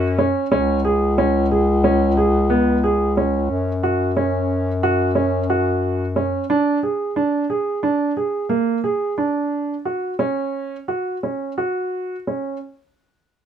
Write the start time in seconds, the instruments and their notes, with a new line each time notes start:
Already playing: bass clarinet F#2, viola C#4, clarinet C#5
0.18 grand piano C#4
0.52 bass clarinet C#2, grand piano C#4
0.85 grand piano G#4
1.18 grand piano C#4
1.51 grand piano G#4
1.84 grand piano C#4
2.17 grand piano G#4
2.50 grand piano B3
2.84 grand piano G#4
3.17 grand piano C#4
3.50 bass clarinet F#2
3.83 grand piano F#4
4.17 grand piano C#4
4.83 grand piano F#4
5.15 grand piano C#4
5.50 grand piano F#4
6.16 grand piano C#4
6.50 grand piano D4
6.83 grand piano G#4
7.16 grand piano D4
7.50 grand piano G#4
7.83 grand piano D4
8.17 grand piano G#4
8.49 grand piano A#3
8.84 grand piano G#4
9.18 grand piano D4
9.85 grand piano F#4
10.19 grand piano C#4
10.88 grand piano F#4
11.23 grand piano C#4
11.58 grand piano F#4
12.27 grand piano C#4